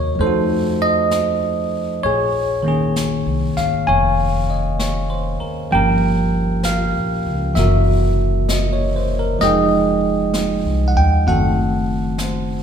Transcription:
0.00 0.17 D#2 medium
0.00 0.20 C3 soft
0.00 0.19 D#3 soft
0.00 0.20 A#3 soft
0.00 0.21 F#4 soft
0.00 0.16 A#4 soft
0.00 0.20 C#5 medium
0.00 0.21 D#5 medium
0.15 1.99 F2 medium
0.15 2.02 F3 soft
0.15 2.04 A3 soft
0.15 brush sweep soft
0.21 2.05 D#4 soft
0.21 2.00 A4 medium
0.21 0.83 C5 medium
0.27 2.07 F#4 soft
0.82 1.69 D#5 medium
1.11 brush sweep soft
1.11 snare soft
1.11 hi-hat pedal soft
2.03 3.22 A#1 medium
2.03 2.67 G#4 medium
2.03 2.92 C#5 medium
2.03 brush sweep soft
2.62 5.71 D#3 soft
2.62 5.70 A#3 soft
2.67 5.71 C#4 soft
2.67 5.74 G#4 medium
2.96 brush sweep soft
2.96 snare soft
2.96 hi-hat pedal soft
3.26 3.55 C2 medium
3.57 3.86 G#1 medium
3.57 3.89 F5 medium
3.57 snare soft
3.87 5.38 F1 medium
3.87 4.78 C#5 medium
3.87 5.37 G#5 medium
3.87 brush sweep soft
4.50 4.98 D#5 soft
4.79 5.37 C#5 soft
4.79 brush sweep soft
4.79 snare soft
4.79 hi-hat pedal soft
5.10 5.58 C5 soft
5.40 5.74 A#4 soft
5.40 muted upright bass stroke soft
5.71 6.92 G1 medium
5.71 7.56 F3 medium
5.71 7.54 A#3 soft
5.71 7.57 C#4 soft
5.71 7.57 G4 medium
5.71 7.54 A#4 medium
5.71 6.61 G5 medium
5.71 brush sweep soft
6.63 7.60 F5 medium
6.63 brush sweep soft
6.63 snare soft
6.63 hi-hat pedal soft
6.95 7.24 A#1 soft
7.26 7.55 C#2 medium
7.54 9.38 F#1 medium
7.54 9.42 C3 soft
7.54 9.40 E3 soft
7.54 9.41 A#3 soft
7.54 8.45 E5 medium
7.54 brush sweep soft
7.54 snare soft
7.59 9.43 F#4 soft
7.59 9.18 A#4 soft
8.49 8.92 D#5 soft
8.49 brush sweep soft
8.49 snare soft
8.49 hi-hat pedal soft
8.73 9.12 C#5 soft
8.96 9.25 C5 soft
9.19 9.51 A#4 soft
9.39 10.61 F1 medium
9.39 11.25 F3 soft
9.39 11.26 G#3 soft
9.39 10.30 D#5 medium
9.39 brush sweep soft
9.39 snare soft
9.43 11.28 D#4 soft
9.43 11.23 G#4 medium
9.43 10.96 G5 soft
10.34 brush sweep soft
10.34 snare soft
10.34 hi-hat pedal soft
10.65 10.94 C2 soft
10.88 10.97 F#5 medium
10.95 11.24 D#2 medium
10.95 11.25 G5 medium
11.26 12.63 F#1 medium
11.26 12.63 D#3 soft
11.26 12.63 A3 soft
11.26 12.63 C4 soft
11.26 12.63 F#4 soft
11.26 12.63 A4 medium
11.26 12.63 F#5 medium
11.26 brush sweep soft
12.18 12.63 C5 soft
12.18 brush sweep soft
12.18 snare soft
12.18 hi-hat pedal medium

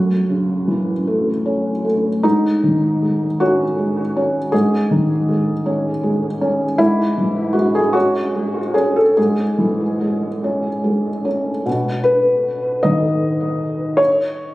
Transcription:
0.00 2.20 F#2 soft
0.00 0.13 A3 soft
0.00 1.85 F#4 medium
0.29 0.92 C#3 soft
0.68 1.30 E3 soft
1.07 1.70 A3 soft
1.46 2.08 C#4 soft
1.85 2.24 A3 soft
2.23 4.49 G#2 soft
2.23 3.40 D#4 medium
2.63 3.25 D#3 soft
3.02 3.63 G#3 soft
3.40 4.01 C#4 soft
3.40 4.53 F#4 medium
3.79 4.38 G#3 soft
4.16 4.76 C#4 soft
4.52 6.76 G#2 soft
4.52 6.79 G#4 medium
4.91 5.51 D#3 soft
5.29 5.88 G#3 soft
5.66 6.26 C#4 soft
6.03 6.64 G#3 soft
6.41 6.79 C#4 soft
6.78 9.13 G#2 soft
6.78 7.55 E4 medium
7.18 7.79 E3 soft
7.53 8.18 G#3 soft
7.53 7.74 F#4 medium
7.75 7.95 G#4 medium
7.93 8.59 C#4 soft
7.93 8.74 F#4 medium
8.35 9.00 G#3 soft
8.74 9.42 C#4 soft
8.74 8.95 G#4 medium
8.96 9.17 A4 medium
9.17 11.63 G#2 soft
9.17 11.26 G#4 medium
9.58 10.26 E3 soft
10.01 10.68 G#3 soft
10.44 11.10 C#4 soft
10.84 11.50 G#3 soft
11.25 11.66 C#4 soft
11.66 13.95 B2 soft
12.04 12.83 B4 medium
12.83 14.54 D#3 soft
12.83 13.99 D#5 medium
13.97 14.54 C#5 medium

